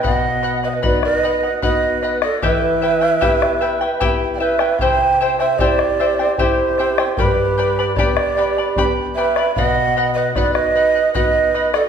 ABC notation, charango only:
X:1
M:3/4
L:1/16
Q:1/4=76
K:Bphr
V:1 name="Charango"
[B^df]2 [Bdf] [df] [Bdf]2 [Bdf] [df] [Bdf]2 [Bdf] [df] | [EGBeg]2 [EBeg] [EBg] [EGBeg]2 [EBeg] [EBg] [EGBeg]2 [EBeg] [EBg] | [EGceg]2 [Eceg] [Ecg] [EGceg]2 [Eceg] [Ecg] [EGceg]2 [Eceg] [Ecg] | [GBdgb]2 [Bdgb] [Bdb] [GBdgb]2 [Bdgb] [Bdb] [GBdgb]2 [Bdgb] [Bdb] |
[B^df]2 [Bdf] [df] [Bdf]2 [Bdf] [df] [Bdf]2 [Bdf] [df] |]